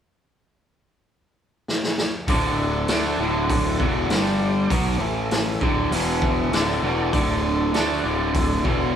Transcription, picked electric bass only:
0, 0, Header, 1, 2, 480
1, 0, Start_track
1, 0, Key_signature, 2, "major"
1, 0, Tempo, 605999
1, 1807, Time_signature, 4, 2, 24, 8
1, 7095, End_track
2, 0, Start_track
2, 0, Title_t, "Picked electric bass"
2, 0, Program_c, 0, 34
2, 1803, Note_on_c, 0, 26, 101
2, 2253, Note_off_c, 0, 26, 0
2, 2287, Note_on_c, 0, 38, 90
2, 2510, Note_off_c, 0, 38, 0
2, 2521, Note_on_c, 0, 26, 92
2, 2973, Note_off_c, 0, 26, 0
2, 3010, Note_on_c, 0, 28, 81
2, 3232, Note_off_c, 0, 28, 0
2, 3238, Note_on_c, 0, 31, 90
2, 3691, Note_off_c, 0, 31, 0
2, 3728, Note_on_c, 0, 35, 91
2, 3951, Note_off_c, 0, 35, 0
2, 3956, Note_on_c, 0, 33, 85
2, 4410, Note_off_c, 0, 33, 0
2, 4446, Note_on_c, 0, 26, 98
2, 4670, Note_off_c, 0, 26, 0
2, 4685, Note_on_c, 0, 28, 100
2, 5135, Note_off_c, 0, 28, 0
2, 5164, Note_on_c, 0, 26, 96
2, 5389, Note_off_c, 0, 26, 0
2, 5403, Note_on_c, 0, 28, 99
2, 5628, Note_off_c, 0, 28, 0
2, 5649, Note_on_c, 0, 26, 99
2, 6096, Note_off_c, 0, 26, 0
2, 6114, Note_on_c, 0, 38, 90
2, 6343, Note_off_c, 0, 38, 0
2, 6368, Note_on_c, 0, 26, 95
2, 6816, Note_off_c, 0, 26, 0
2, 6849, Note_on_c, 0, 28, 87
2, 7071, Note_off_c, 0, 28, 0
2, 7095, End_track
0, 0, End_of_file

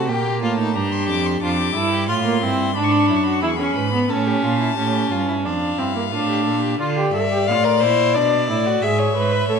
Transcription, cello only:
0, 0, Header, 1, 2, 480
1, 0, Start_track
1, 0, Tempo, 671892
1, 1017, Time_signature, 4, 2, 24, 8
1, 6855, End_track
2, 0, Start_track
2, 0, Title_t, "Cello"
2, 0, Program_c, 0, 42
2, 59, Note_on_c, 0, 46, 72
2, 296, Note_on_c, 0, 45, 75
2, 307, Note_off_c, 0, 46, 0
2, 536, Note_on_c, 0, 43, 73
2, 547, Note_off_c, 0, 45, 0
2, 775, Note_on_c, 0, 41, 76
2, 786, Note_off_c, 0, 43, 0
2, 1010, Note_off_c, 0, 41, 0
2, 1014, Note_on_c, 0, 41, 74
2, 1249, Note_off_c, 0, 41, 0
2, 1254, Note_on_c, 0, 43, 83
2, 1493, Note_on_c, 0, 45, 81
2, 1503, Note_off_c, 0, 43, 0
2, 1732, Note_on_c, 0, 43, 75
2, 1742, Note_off_c, 0, 45, 0
2, 1965, Note_on_c, 0, 44, 76
2, 1976, Note_off_c, 0, 43, 0
2, 2204, Note_on_c, 0, 42, 72
2, 2215, Note_off_c, 0, 44, 0
2, 2444, Note_on_c, 0, 40, 78
2, 2455, Note_off_c, 0, 42, 0
2, 2680, Note_off_c, 0, 40, 0
2, 2685, Note_on_c, 0, 44, 70
2, 2923, Note_off_c, 0, 44, 0
2, 2928, Note_on_c, 0, 45, 75
2, 3163, Note_off_c, 0, 45, 0
2, 3167, Note_on_c, 0, 46, 75
2, 3404, Note_off_c, 0, 46, 0
2, 3409, Note_on_c, 0, 45, 78
2, 3647, Note_off_c, 0, 45, 0
2, 3651, Note_on_c, 0, 43, 66
2, 3895, Note_on_c, 0, 41, 65
2, 3906, Note_off_c, 0, 43, 0
2, 4128, Note_off_c, 0, 41, 0
2, 4132, Note_on_c, 0, 43, 63
2, 4376, Note_on_c, 0, 45, 67
2, 4386, Note_off_c, 0, 43, 0
2, 4617, Note_on_c, 0, 46, 64
2, 4627, Note_off_c, 0, 45, 0
2, 4854, Note_off_c, 0, 46, 0
2, 4858, Note_on_c, 0, 50, 81
2, 5084, Note_off_c, 0, 50, 0
2, 5099, Note_on_c, 0, 43, 78
2, 5343, Note_on_c, 0, 45, 79
2, 5354, Note_off_c, 0, 43, 0
2, 5582, Note_on_c, 0, 46, 72
2, 5593, Note_off_c, 0, 45, 0
2, 5827, Note_on_c, 0, 47, 75
2, 5837, Note_off_c, 0, 46, 0
2, 6064, Note_on_c, 0, 45, 69
2, 6075, Note_off_c, 0, 47, 0
2, 6300, Note_off_c, 0, 45, 0
2, 6304, Note_on_c, 0, 44, 78
2, 6537, Note_off_c, 0, 44, 0
2, 6542, Note_on_c, 0, 44, 68
2, 6775, Note_off_c, 0, 44, 0
2, 6780, Note_on_c, 0, 45, 73
2, 6855, Note_off_c, 0, 45, 0
2, 6855, End_track
0, 0, End_of_file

